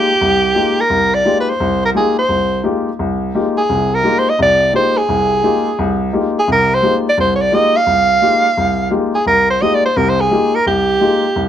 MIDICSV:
0, 0, Header, 1, 3, 480
1, 0, Start_track
1, 0, Tempo, 348230
1, 1246, Time_signature, 4, 2, 24, 8
1, 15832, End_track
2, 0, Start_track
2, 0, Title_t, "Soprano saxophone"
2, 0, Program_c, 0, 64
2, 0, Note_on_c, 0, 67, 92
2, 1113, Note_on_c, 0, 70, 89
2, 1133, Note_off_c, 0, 67, 0
2, 1578, Note_on_c, 0, 74, 83
2, 1598, Note_off_c, 0, 70, 0
2, 1922, Note_off_c, 0, 74, 0
2, 1930, Note_on_c, 0, 71, 68
2, 2067, Note_on_c, 0, 72, 83
2, 2088, Note_off_c, 0, 71, 0
2, 2533, Note_off_c, 0, 72, 0
2, 2555, Note_on_c, 0, 70, 82
2, 2623, Note_off_c, 0, 70, 0
2, 2714, Note_on_c, 0, 68, 86
2, 2991, Note_off_c, 0, 68, 0
2, 3014, Note_on_c, 0, 72, 86
2, 3612, Note_off_c, 0, 72, 0
2, 4928, Note_on_c, 0, 68, 81
2, 5442, Note_on_c, 0, 70, 83
2, 5463, Note_off_c, 0, 68, 0
2, 5776, Note_on_c, 0, 72, 87
2, 5796, Note_off_c, 0, 70, 0
2, 5921, Note_on_c, 0, 75, 82
2, 5942, Note_off_c, 0, 72, 0
2, 6066, Note_off_c, 0, 75, 0
2, 6097, Note_on_c, 0, 74, 92
2, 6522, Note_off_c, 0, 74, 0
2, 6559, Note_on_c, 0, 72, 88
2, 6863, Note_on_c, 0, 68, 82
2, 6883, Note_off_c, 0, 72, 0
2, 8291, Note_off_c, 0, 68, 0
2, 8810, Note_on_c, 0, 68, 81
2, 8945, Note_off_c, 0, 68, 0
2, 8990, Note_on_c, 0, 70, 86
2, 9295, Note_on_c, 0, 72, 92
2, 9316, Note_off_c, 0, 70, 0
2, 9597, Note_off_c, 0, 72, 0
2, 9773, Note_on_c, 0, 74, 84
2, 9906, Note_off_c, 0, 74, 0
2, 9931, Note_on_c, 0, 72, 94
2, 10128, Note_off_c, 0, 72, 0
2, 10141, Note_on_c, 0, 73, 71
2, 10217, Note_on_c, 0, 74, 89
2, 10238, Note_off_c, 0, 73, 0
2, 10392, Note_on_c, 0, 75, 105
2, 10413, Note_off_c, 0, 74, 0
2, 10703, Note_on_c, 0, 77, 111
2, 10723, Note_off_c, 0, 75, 0
2, 12299, Note_off_c, 0, 77, 0
2, 12615, Note_on_c, 0, 68, 81
2, 12764, Note_off_c, 0, 68, 0
2, 12783, Note_on_c, 0, 70, 91
2, 13064, Note_off_c, 0, 70, 0
2, 13100, Note_on_c, 0, 72, 83
2, 13259, Note_on_c, 0, 75, 83
2, 13280, Note_off_c, 0, 72, 0
2, 13431, Note_on_c, 0, 74, 84
2, 13451, Note_off_c, 0, 75, 0
2, 13578, Note_off_c, 0, 74, 0
2, 13584, Note_on_c, 0, 72, 76
2, 13744, Note_on_c, 0, 70, 82
2, 13765, Note_off_c, 0, 72, 0
2, 13913, Note_on_c, 0, 72, 87
2, 13933, Note_off_c, 0, 70, 0
2, 14069, Note_on_c, 0, 68, 87
2, 14089, Note_off_c, 0, 72, 0
2, 14544, Note_on_c, 0, 70, 82
2, 14565, Note_off_c, 0, 68, 0
2, 14699, Note_off_c, 0, 70, 0
2, 14710, Note_on_c, 0, 67, 90
2, 15832, Note_off_c, 0, 67, 0
2, 15832, End_track
3, 0, Start_track
3, 0, Title_t, "Grand piano"
3, 0, Program_c, 1, 0
3, 0, Note_on_c, 1, 67, 54
3, 139, Note_off_c, 1, 67, 0
3, 291, Note_on_c, 1, 36, 66
3, 704, Note_off_c, 1, 36, 0
3, 762, Note_on_c, 1, 56, 48
3, 762, Note_on_c, 1, 58, 44
3, 762, Note_on_c, 1, 63, 45
3, 765, Note_on_c, 1, 67, 52
3, 767, Note_on_c, 1, 65, 43
3, 1091, Note_off_c, 1, 56, 0
3, 1091, Note_off_c, 1, 58, 0
3, 1091, Note_off_c, 1, 63, 0
3, 1093, Note_off_c, 1, 67, 0
3, 1094, Note_off_c, 1, 65, 0
3, 1241, Note_on_c, 1, 36, 62
3, 1658, Note_off_c, 1, 36, 0
3, 1725, Note_on_c, 1, 56, 50
3, 1729, Note_on_c, 1, 58, 45
3, 1729, Note_on_c, 1, 63, 45
3, 1731, Note_on_c, 1, 65, 47
3, 1736, Note_on_c, 1, 67, 55
3, 2054, Note_off_c, 1, 56, 0
3, 2055, Note_off_c, 1, 58, 0
3, 2056, Note_off_c, 1, 63, 0
3, 2057, Note_off_c, 1, 65, 0
3, 2059, Note_off_c, 1, 67, 0
3, 2209, Note_on_c, 1, 36, 72
3, 2624, Note_off_c, 1, 36, 0
3, 2682, Note_on_c, 1, 56, 50
3, 2683, Note_on_c, 1, 58, 47
3, 2684, Note_on_c, 1, 63, 44
3, 2689, Note_on_c, 1, 67, 52
3, 2692, Note_on_c, 1, 65, 45
3, 3013, Note_off_c, 1, 56, 0
3, 3013, Note_off_c, 1, 58, 0
3, 3014, Note_off_c, 1, 63, 0
3, 3016, Note_off_c, 1, 67, 0
3, 3018, Note_off_c, 1, 65, 0
3, 3155, Note_on_c, 1, 36, 56
3, 3577, Note_off_c, 1, 36, 0
3, 3630, Note_on_c, 1, 56, 45
3, 3634, Note_on_c, 1, 58, 43
3, 3635, Note_on_c, 1, 63, 44
3, 3636, Note_on_c, 1, 65, 45
3, 3647, Note_on_c, 1, 67, 55
3, 3967, Note_off_c, 1, 56, 0
3, 3969, Note_off_c, 1, 58, 0
3, 3970, Note_off_c, 1, 63, 0
3, 3970, Note_off_c, 1, 65, 0
3, 3976, Note_off_c, 1, 67, 0
3, 4126, Note_on_c, 1, 36, 66
3, 4543, Note_off_c, 1, 36, 0
3, 4611, Note_on_c, 1, 56, 49
3, 4613, Note_on_c, 1, 58, 42
3, 4617, Note_on_c, 1, 63, 43
3, 4618, Note_on_c, 1, 65, 43
3, 4621, Note_on_c, 1, 67, 55
3, 4938, Note_off_c, 1, 56, 0
3, 4939, Note_off_c, 1, 58, 0
3, 4941, Note_off_c, 1, 63, 0
3, 4941, Note_off_c, 1, 65, 0
3, 4943, Note_off_c, 1, 67, 0
3, 5092, Note_on_c, 1, 36, 60
3, 5097, Note_on_c, 1, 48, 62
3, 5506, Note_off_c, 1, 36, 0
3, 5509, Note_off_c, 1, 48, 0
3, 5567, Note_on_c, 1, 56, 47
3, 5567, Note_on_c, 1, 58, 45
3, 5571, Note_on_c, 1, 63, 46
3, 5572, Note_on_c, 1, 67, 50
3, 5578, Note_on_c, 1, 65, 45
3, 5896, Note_off_c, 1, 56, 0
3, 5896, Note_off_c, 1, 58, 0
3, 5898, Note_off_c, 1, 63, 0
3, 5899, Note_off_c, 1, 67, 0
3, 5901, Note_off_c, 1, 65, 0
3, 6051, Note_on_c, 1, 48, 69
3, 6052, Note_on_c, 1, 36, 67
3, 6466, Note_off_c, 1, 36, 0
3, 6466, Note_off_c, 1, 48, 0
3, 6521, Note_on_c, 1, 56, 48
3, 6522, Note_on_c, 1, 58, 40
3, 6528, Note_on_c, 1, 63, 47
3, 6529, Note_on_c, 1, 65, 41
3, 6532, Note_on_c, 1, 67, 53
3, 6853, Note_off_c, 1, 56, 0
3, 6854, Note_off_c, 1, 58, 0
3, 6857, Note_off_c, 1, 63, 0
3, 6857, Note_off_c, 1, 65, 0
3, 6859, Note_off_c, 1, 67, 0
3, 7011, Note_on_c, 1, 48, 63
3, 7013, Note_on_c, 1, 36, 62
3, 7426, Note_off_c, 1, 48, 0
3, 7427, Note_off_c, 1, 36, 0
3, 7487, Note_on_c, 1, 56, 51
3, 7489, Note_on_c, 1, 58, 46
3, 7493, Note_on_c, 1, 63, 45
3, 7495, Note_on_c, 1, 65, 46
3, 7498, Note_on_c, 1, 67, 53
3, 7816, Note_off_c, 1, 56, 0
3, 7817, Note_off_c, 1, 58, 0
3, 7819, Note_off_c, 1, 63, 0
3, 7820, Note_off_c, 1, 65, 0
3, 7822, Note_off_c, 1, 67, 0
3, 7977, Note_on_c, 1, 36, 70
3, 8389, Note_off_c, 1, 36, 0
3, 8448, Note_on_c, 1, 58, 47
3, 8449, Note_on_c, 1, 63, 48
3, 8450, Note_on_c, 1, 56, 45
3, 8457, Note_on_c, 1, 65, 43
3, 8461, Note_on_c, 1, 67, 56
3, 8776, Note_off_c, 1, 58, 0
3, 8777, Note_off_c, 1, 63, 0
3, 8778, Note_off_c, 1, 56, 0
3, 8781, Note_off_c, 1, 65, 0
3, 8783, Note_off_c, 1, 67, 0
3, 8929, Note_on_c, 1, 36, 61
3, 8931, Note_on_c, 1, 48, 61
3, 9344, Note_off_c, 1, 36, 0
3, 9345, Note_off_c, 1, 48, 0
3, 9408, Note_on_c, 1, 56, 49
3, 9409, Note_on_c, 1, 58, 45
3, 9418, Note_on_c, 1, 67, 55
3, 9419, Note_on_c, 1, 63, 47
3, 9424, Note_on_c, 1, 65, 47
3, 9736, Note_off_c, 1, 56, 0
3, 9737, Note_off_c, 1, 58, 0
3, 9741, Note_off_c, 1, 63, 0
3, 9741, Note_off_c, 1, 67, 0
3, 9744, Note_off_c, 1, 65, 0
3, 9892, Note_on_c, 1, 36, 68
3, 10305, Note_off_c, 1, 36, 0
3, 10364, Note_on_c, 1, 56, 51
3, 10368, Note_on_c, 1, 58, 44
3, 10371, Note_on_c, 1, 63, 46
3, 10374, Note_on_c, 1, 65, 47
3, 10379, Note_on_c, 1, 67, 55
3, 10693, Note_off_c, 1, 56, 0
3, 10695, Note_off_c, 1, 58, 0
3, 10697, Note_off_c, 1, 63, 0
3, 10698, Note_off_c, 1, 65, 0
3, 10701, Note_off_c, 1, 67, 0
3, 10841, Note_on_c, 1, 36, 61
3, 11259, Note_off_c, 1, 36, 0
3, 11325, Note_on_c, 1, 56, 50
3, 11327, Note_on_c, 1, 58, 43
3, 11330, Note_on_c, 1, 63, 44
3, 11331, Note_on_c, 1, 65, 45
3, 11334, Note_on_c, 1, 67, 54
3, 11653, Note_off_c, 1, 56, 0
3, 11654, Note_off_c, 1, 58, 0
3, 11656, Note_off_c, 1, 63, 0
3, 11657, Note_off_c, 1, 65, 0
3, 11658, Note_off_c, 1, 67, 0
3, 11818, Note_on_c, 1, 36, 66
3, 12227, Note_off_c, 1, 36, 0
3, 12275, Note_on_c, 1, 63, 42
3, 12278, Note_on_c, 1, 56, 51
3, 12279, Note_on_c, 1, 58, 42
3, 12284, Note_on_c, 1, 65, 45
3, 12285, Note_on_c, 1, 67, 54
3, 12608, Note_off_c, 1, 63, 0
3, 12609, Note_off_c, 1, 56, 0
3, 12610, Note_off_c, 1, 58, 0
3, 12612, Note_off_c, 1, 65, 0
3, 12613, Note_off_c, 1, 67, 0
3, 12765, Note_on_c, 1, 36, 57
3, 13180, Note_off_c, 1, 36, 0
3, 13250, Note_on_c, 1, 56, 51
3, 13260, Note_on_c, 1, 58, 44
3, 13262, Note_on_c, 1, 63, 46
3, 13264, Note_on_c, 1, 67, 50
3, 13266, Note_on_c, 1, 65, 45
3, 13575, Note_off_c, 1, 56, 0
3, 13580, Note_off_c, 1, 58, 0
3, 13581, Note_off_c, 1, 63, 0
3, 13582, Note_off_c, 1, 67, 0
3, 13583, Note_off_c, 1, 65, 0
3, 13734, Note_on_c, 1, 48, 72
3, 13737, Note_on_c, 1, 36, 66
3, 14144, Note_off_c, 1, 48, 0
3, 14146, Note_off_c, 1, 36, 0
3, 14209, Note_on_c, 1, 56, 50
3, 14210, Note_on_c, 1, 58, 45
3, 14217, Note_on_c, 1, 63, 43
3, 14218, Note_on_c, 1, 67, 56
3, 14219, Note_on_c, 1, 65, 42
3, 14534, Note_off_c, 1, 56, 0
3, 14534, Note_off_c, 1, 58, 0
3, 14538, Note_off_c, 1, 63, 0
3, 14539, Note_off_c, 1, 65, 0
3, 14539, Note_off_c, 1, 67, 0
3, 14698, Note_on_c, 1, 36, 63
3, 15106, Note_off_c, 1, 36, 0
3, 15169, Note_on_c, 1, 56, 54
3, 15177, Note_on_c, 1, 58, 49
3, 15179, Note_on_c, 1, 63, 50
3, 15181, Note_on_c, 1, 65, 47
3, 15186, Note_on_c, 1, 67, 51
3, 15494, Note_off_c, 1, 56, 0
3, 15498, Note_off_c, 1, 58, 0
3, 15499, Note_off_c, 1, 63, 0
3, 15500, Note_off_c, 1, 65, 0
3, 15502, Note_off_c, 1, 67, 0
3, 15658, Note_on_c, 1, 36, 69
3, 15832, Note_off_c, 1, 36, 0
3, 15832, End_track
0, 0, End_of_file